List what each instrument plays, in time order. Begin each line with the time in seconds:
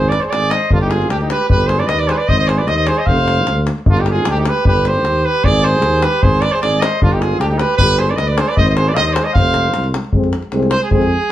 Already playing: tuba G#1, flugelhorn G#4, trumpet C5
0.03 davul high
0.09 trumpet D5, davul high
0.13 flugelhorn B4
0.21 flugelhorn G#4, trumpet C5, davul high
0.26 flugelhorn G#4, trumpet C5
0.30 tuba G#1, flugelhorn G#4, trumpet D5, davul high
0.43 davul high
0.50 flugelhorn C5, trumpet D#5, davul high
0.70 tuba G1, flugelhorn D4, trumpet F4, davul low
0.81 flugelhorn D#4, trumpet G4, davul high
0.90 flugelhorn F4, trumpet G#4, davul high
1.02 davul high
1.10 tuba D2, flugelhorn D4, trumpet G4, davul high
1.20 flugelhorn D#4, trumpet G4, davul high
1.30 flugelhorn G4, trumpet B4, davul high
1.40 davul high
1.49 tuba G1, flugelhorn G4, trumpet B4, davul low
1.61 davul high
1.67 flugelhorn G#4, trumpet C5, davul high
1.79 flugelhorn B4, trumpet D5, davul high
1.87 tuba D#2, flugelhorn B4, trumpet D#5, davul high
1.99 flugelhorn B4, trumpet D5, davul high
2.08 flugelhorn G4 G#4, trumpet B4 C5, davul high
2.13 flugelhorn G#4, trumpet C5
2.17 flugelhorn B4, trumpet D5, davul high
2.28 tuba G#1, flugelhorn C5, trumpet D#5, davul low
2.38 flugelhorn C5, trumpet D#5, davul high
2.46 flugelhorn G#4, trumpet C5, davul high
2.57 flugelhorn B4, trumpet D5, davul high
2.67 tuba D#2, flugelhorn C5, trumpet D#5, davul high
2.77 flugelhorn C5, trumpet D#5, davul high
2.87 flugelhorn G#4, trumpet C5, davul high
2.98 flugelhorn C5, trumpet D#5
3.06 tuba F1, flugelhorn C5, trumpet F5, davul low
3.17 davul high
3.28 davul high
3.38 davul high
3.47 tuba D2, davul high
3.67 davul high
3.78 davul high
3.86 tuba G1, flugelhorn D4, trumpet F4, davul low
3.97 flugelhorn D#4, trumpet G4, davul high
4.06 flugelhorn F4, davul high
4.10 trumpet G#4
4.16 davul high
4.25 tuba D2, flugelhorn D4, davul high
4.30 trumpet G4
4.37 flugelhorn D#4, trumpet G4, davul high
4.45 flugelhorn G4, trumpet B4, davul high
4.57 davul high
4.65 tuba G1, flugelhorn G4, trumpet B4, davul low
4.75 davul high
4.85 flugelhorn G4, trumpet C5, davul high
4.95 davul high
5.05 tuba D#2, davul high
5.16 davul high
5.25 flugelhorn G4, trumpet B4
5.34 davul high
5.44 tuba G#1, flugelhorn G#4, trumpet D5, davul low
5.55 davul high
5.64 flugelhorn G#4, trumpet C5, davul high
5.74 davul high
5.82 tuba D#2, davul high
5.92 davul high
6.02 flugelhorn G4, trumpet B4, davul high
6.22 tuba G#1, flugelhorn G#4, trumpet C5, davul low
6.41 flugelhorn B4, trumpet D5, davul high
6.52 flugelhorn G#4, trumpet C5, davul high
6.62 tuba G#1, flugelhorn G#4, trumpet D5, davul high
6.73 davul high
6.80 flugelhorn C5, trumpet D#5, davul high
7.01 tuba G1, flugelhorn D4, trumpet F4, davul low
7.12 flugelhorn D#4, trumpet G4, davul high
7.21 flugelhorn F4, trumpet G#4, davul high
7.32 davul high
7.40 tuba D2, flugelhorn D4, trumpet G4, davul high
7.49 flugelhorn D#4, trumpet G4, davul high
7.58 flugelhorn G4, trumpet B4, davul high
7.70 davul high
7.77 tuba G1, flugelhorn G4, trumpet B4, davul low
7.89 davul high
7.98 flugelhorn G#4, trumpet C5, davul high
8.09 flugelhorn B4, trumpet D5, davul high
8.16 tuba D2, flugelhorn B4, trumpet D#5, davul high
8.27 flugelhorn B4, trumpet D5
8.38 flugelhorn G#4, trumpet C5, davul high
8.48 flugelhorn B4, trumpet D5, davul high
8.57 tuba G#1, flugelhorn C5, trumpet D#5, davul low
8.68 flugelhorn C5, trumpet D#5, davul high
8.76 flugelhorn G#4, trumpet C5, davul high
8.87 flugelhorn B4, trumpet D5, davul high
8.94 flugelhorn C5 D5, trumpet D#5 F5, davul high
8.98 tuba D#2
9.06 flugelhorn C5, trumpet D#5, davul high
9.13 flugelhorn G#4, trumpet C5, davul high
9.24 flugelhorn C5, trumpet D#5, davul high
9.34 tuba F1, flugelhorn C5, trumpet F5, davul low
9.54 davul high
9.65 davul high
9.74 tuba C2, davul high
9.84 davul high
9.94 davul high
10.04 davul high
10.13 tuba F2, euphonium G#3, french horn C4, davul low
10.24 davul high
10.33 davul high
10.43 davul high
10.52 tuba C2, euphonium G#3, french horn C4, davul high
10.63 davul high
10.71 trumpet C5, davul high
10.83 trumpet G#4
10.90 tuba F2, euphonium G#3, french horn C4, trumpet G#4, davul low
11.02 davul high
11.21 davul high